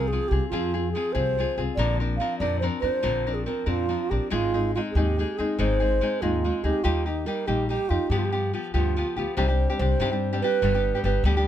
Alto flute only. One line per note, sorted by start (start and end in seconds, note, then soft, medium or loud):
0.08 0.30 G#4 medium
0.28 0.48 G4 medium
0.49 0.90 F4 medium
0.92 1.14 G#4 medium
1.13 1.61 C5 medium
1.75 1.97 D5 medium
2.17 2.38 F5 medium
2.39 2.59 D5 medium
2.60 2.66 C5 medium
2.80 3.35 C5 medium
3.34 3.45 G#4 medium
3.45 3.69 A#4 medium
3.68 4.11 F4 medium
4.10 4.31 G4 medium
4.31 4.71 F4 medium
4.75 4.81 F4 medium
4.91 4.97 G#4 medium
4.96 5.39 G4 medium
5.38 5.61 G#4 medium
5.59 6.23 C5 medium
6.21 6.65 F4 medium
6.63 6.85 G4 medium
6.84 7.08 F4 medium
7.07 7.28 D#4 medium
7.26 7.48 A#4 medium
7.47 7.67 G4 medium
7.68 7.91 G4 medium
7.89 8.11 F4 medium
8.09 8.19 G4 medium
8.18 8.26 F4 soft
8.25 8.52 G4 medium
8.74 9.19 F4 medium
9.17 9.36 G4 medium
9.36 9.76 C5 medium
9.78 10.37 C5 medium
10.41 11.00 B4 medium
11.05 11.23 B4 medium
11.27 11.47 G4 medium